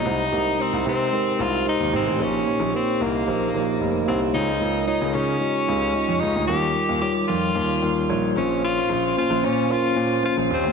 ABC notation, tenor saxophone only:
X:1
M:4/4
L:1/8
Q:1/4=112
K:Bbdor
V:1 name="Tenor saxophone"
E2 C C2 F E C | D2 C B,4 C | E2 E D4 E | G2 G F3 z D |
F2 F D F2 F C |]